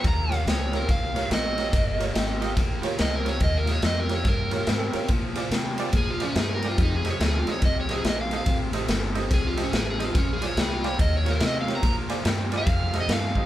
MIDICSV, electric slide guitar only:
0, 0, Header, 1, 2, 480
1, 0, Start_track
1, 0, Tempo, 420463
1, 58, Time_signature, 4, 2, 24, 8
1, 15364, End_track
2, 0, Start_track
2, 0, Title_t, "Electric slide guitar"
2, 0, Program_c, 0, 29
2, 86, Note_on_c, 0, 82, 96
2, 387, Note_off_c, 0, 82, 0
2, 387, Note_on_c, 0, 77, 89
2, 546, Note_off_c, 0, 77, 0
2, 557, Note_on_c, 0, 73, 94
2, 842, Note_off_c, 0, 73, 0
2, 868, Note_on_c, 0, 70, 84
2, 1027, Note_off_c, 0, 70, 0
2, 1034, Note_on_c, 0, 77, 87
2, 1493, Note_off_c, 0, 77, 0
2, 1516, Note_on_c, 0, 75, 91
2, 2905, Note_off_c, 0, 75, 0
2, 3441, Note_on_c, 0, 75, 95
2, 3586, Note_off_c, 0, 75, 0
2, 3603, Note_on_c, 0, 70, 93
2, 3747, Note_off_c, 0, 70, 0
2, 3758, Note_on_c, 0, 73, 84
2, 3905, Note_off_c, 0, 73, 0
2, 3923, Note_on_c, 0, 75, 113
2, 4068, Note_off_c, 0, 75, 0
2, 4080, Note_on_c, 0, 70, 92
2, 4226, Note_off_c, 0, 70, 0
2, 4236, Note_on_c, 0, 73, 87
2, 4384, Note_off_c, 0, 73, 0
2, 4406, Note_on_c, 0, 75, 85
2, 4549, Note_off_c, 0, 75, 0
2, 4564, Note_on_c, 0, 70, 91
2, 4708, Note_off_c, 0, 70, 0
2, 4737, Note_on_c, 0, 73, 86
2, 4875, Note_off_c, 0, 73, 0
2, 4890, Note_on_c, 0, 70, 101
2, 5807, Note_off_c, 0, 70, 0
2, 6812, Note_on_c, 0, 68, 98
2, 6953, Note_off_c, 0, 68, 0
2, 6972, Note_on_c, 0, 65, 92
2, 7112, Note_off_c, 0, 65, 0
2, 7124, Note_on_c, 0, 61, 89
2, 7268, Note_off_c, 0, 61, 0
2, 7304, Note_on_c, 0, 68, 91
2, 7439, Note_off_c, 0, 68, 0
2, 7469, Note_on_c, 0, 70, 102
2, 7602, Note_off_c, 0, 70, 0
2, 7633, Note_on_c, 0, 65, 80
2, 7764, Note_off_c, 0, 65, 0
2, 7789, Note_on_c, 0, 63, 97
2, 7922, Note_off_c, 0, 63, 0
2, 7943, Note_on_c, 0, 68, 100
2, 8078, Note_off_c, 0, 68, 0
2, 8109, Note_on_c, 0, 73, 83
2, 8241, Note_off_c, 0, 73, 0
2, 8276, Note_on_c, 0, 68, 99
2, 8405, Note_off_c, 0, 68, 0
2, 8430, Note_on_c, 0, 65, 83
2, 8562, Note_off_c, 0, 65, 0
2, 8579, Note_on_c, 0, 73, 90
2, 8716, Note_off_c, 0, 73, 0
2, 8737, Note_on_c, 0, 75, 90
2, 8875, Note_off_c, 0, 75, 0
2, 8910, Note_on_c, 0, 73, 88
2, 9042, Note_off_c, 0, 73, 0
2, 9056, Note_on_c, 0, 68, 83
2, 9195, Note_off_c, 0, 68, 0
2, 9235, Note_on_c, 0, 75, 86
2, 9365, Note_off_c, 0, 75, 0
2, 9372, Note_on_c, 0, 77, 85
2, 9513, Note_off_c, 0, 77, 0
2, 9546, Note_on_c, 0, 77, 95
2, 9778, Note_off_c, 0, 77, 0
2, 10660, Note_on_c, 0, 68, 100
2, 10797, Note_off_c, 0, 68, 0
2, 10809, Note_on_c, 0, 65, 78
2, 10951, Note_off_c, 0, 65, 0
2, 10997, Note_on_c, 0, 61, 83
2, 11125, Note_off_c, 0, 61, 0
2, 11139, Note_on_c, 0, 68, 92
2, 11276, Note_off_c, 0, 68, 0
2, 11304, Note_on_c, 0, 68, 87
2, 11439, Note_off_c, 0, 68, 0
2, 11466, Note_on_c, 0, 65, 85
2, 11600, Note_off_c, 0, 65, 0
2, 11618, Note_on_c, 0, 61, 103
2, 11755, Note_off_c, 0, 61, 0
2, 11794, Note_on_c, 0, 68, 95
2, 11924, Note_off_c, 0, 68, 0
2, 11937, Note_on_c, 0, 73, 85
2, 12075, Note_off_c, 0, 73, 0
2, 12099, Note_on_c, 0, 68, 91
2, 12236, Note_off_c, 0, 68, 0
2, 12254, Note_on_c, 0, 65, 88
2, 12394, Note_off_c, 0, 65, 0
2, 12408, Note_on_c, 0, 73, 94
2, 12550, Note_off_c, 0, 73, 0
2, 12570, Note_on_c, 0, 75, 93
2, 12711, Note_off_c, 0, 75, 0
2, 12749, Note_on_c, 0, 73, 91
2, 12881, Note_off_c, 0, 73, 0
2, 12907, Note_on_c, 0, 70, 97
2, 13040, Note_off_c, 0, 70, 0
2, 13080, Note_on_c, 0, 75, 91
2, 13207, Note_off_c, 0, 75, 0
2, 13252, Note_on_c, 0, 77, 81
2, 13373, Note_off_c, 0, 77, 0
2, 13415, Note_on_c, 0, 82, 96
2, 13632, Note_off_c, 0, 82, 0
2, 14357, Note_on_c, 0, 77, 115
2, 14794, Note_off_c, 0, 77, 0
2, 14843, Note_on_c, 0, 75, 96
2, 14967, Note_off_c, 0, 75, 0
2, 14985, Note_on_c, 0, 77, 99
2, 15364, Note_off_c, 0, 77, 0
2, 15364, End_track
0, 0, End_of_file